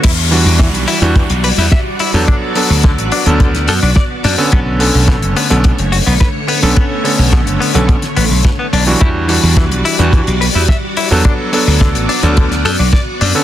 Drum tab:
CC |x---------------|----------------|----------------|----------------|
HH |x-o-xxoxxxo---o-|x-o--xoxxxo---o-|x-o-xxoxxxo-x-o-|x-o--xoxxxo-x-o-|
SD |----o-------o---|----o----o--o---|----o-------o---|----o----o--o---|
BD |o---o---o---o---|o---o---o---o---|o---o---o---o---|o---o---o---o---|

CC |----------------|----------------|
HH |x-o-xxoxxxo---o-|x-o-xxoxxxo-x-o-|
SD |----o-------o---|----o----o--o---|
BD |o---o---o---o---|o---o---o---o---|